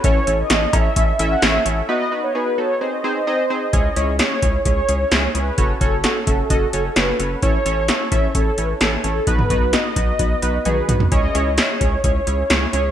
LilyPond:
<<
  \new Staff \with { instrumentName = "Analog polysynth" } { \time 4/4 \key cis \minor \tempo 4 = 130 cis''8. dis''8. e''4~ e''16 fis''16 e''4 | dis''8. cis''16 b'8 cis''8 dis''4 bis'8 dis''8~ | dis''4 cis''4 cis''4. b'8~ | b'8 a'2~ a'8 b'4 |
cis''2 a'8 b'8 a'8 a'8 | b'4 dis''2 b'4 | dis''4 cis''4 cis''2 | }
  \new Staff \with { instrumentName = "Synth keys" } { \time 4/4 \key cis \minor <cis' e' a' cis''>8 <cis' e' a' cis''>8 <cis' e' a' cis''>8 <cis' e' a' cis''>8 <cis' e' a' e''>8 <cis' e' a' e''>8 <cis' e' a' cis''>8 <cis' e' a' cis''>8 | <b dis' fis' b'>8 <b dis' fis' b'>8 <b dis' fis' gis'>8 <b dis' fis' a'>8 <bis dis' gis' bis'>8 <bis dis' gis' bis'>8 <bis dis' gis' dis''>8 <bis dis' gis' bis'>8 | <cis' e' gis' cis''>8 <cis' e' gis' cis''>8 <cis' e' gis' dis''>8 <cis' e' gis' cis''>8 <cis' e' gis' cis''>8 <cis' e' gis' cis''>8 <cis' e' gis' cis''>8 <cis' e' gis' cis''>8 | <cis' fis' a' cis''>8 <cis' fis' a' cis''>8 <cis' fis' a' cis''>8 <cis' fis' a' e''>8 <cis' fis' a' dis''>8 <cis' fis' a' cis''>8 <cis' fis' a' cis''>8 <cis' fis' a' cis''>8 |
<cis' e' a' cis''>8 <cis' e' a' cis''>8 <cis' e' a' e''>8 <cis' e' a' e''>8 <cis' e' a' cis''>8 <cis' e' a' cis''>8 <cis' e' a' cis''>8 <cis' e' a' cis''>8 | <b dis' fis' b'>8 <b dis' fis' b'>8 <b dis' fis' b'>8 <b dis' fis' b'>8 <b dis' fis' b'>8 <b dis' fis' b'>8 <b dis' fis' gis'>8 <b dis' fis' b'>8 | <cis' e' gis' cis''>8 <cis' e' gis' cis''>8 <cis' e' gis' e''>8 <cis' e' gis' cis''>8 <cis' e' gis' cis''>8 <cis' e' gis' cis''>8 <cis' e' gis' cis''>8 <cis' e' gis' cis''>8 | }
  \new Staff \with { instrumentName = "Analog synth bass" } { \clef bass \time 4/4 \key cis \minor a,,8 a,,8 a,,8 a,,8 a,,8 a,,8 a,,8 a,,8 | r1 | cis,8 cis,8. r16 cis,8 cis,8 cis,8 cis,8 cis,8 | fis,,8 fis,,8. r16 fis,,8 fis,,8 fis,,8 fis,,8 fis,,8 |
a,,8 a,,8. r16 a,,8 a,,8 a,,8 a,,8 a,,8 | b,,8 b,,8. r16 b,,8 b,,8 b,,8 b,,8 b,,8 | cis,8 cis,8. r16 cis,8 cis,8 cis,8 cis,8 cis,8 | }
  \new DrumStaff \with { instrumentName = "Drums" } \drummode { \time 4/4 <hh bd>8 hh8 <hh sn>8 <cb hh bd>8 <hh bd>8 hh8 <hh sn>8 hh8 | r4 r4 r4 r4 | <hh bd>8 hh8 <hh sn>8 <hh bd>8 <hh bd>8 hh8 <hh sn>8 hh8 | <hh bd>8 <hh bd>8 <hh sn>8 <hh bd>8 <hh bd>8 hh8 <hh sn>8 hh8 |
<hh bd>8 hh8 <hh sn>8 <hh bd>8 <hh bd>8 hh8 <hh sn>8 hh8 | <hh bd>16 toml16 <hh bd>8 <hh sn>8 <hh bd>8 <hh bd>8 hh8 <hh tommh>8 <hh toml>16 tomfh16 | <hh bd>8 hh8 <hh sn>8 <hh bd>8 <hh bd>8 hh8 <hh sn>8 hh8 | }
>>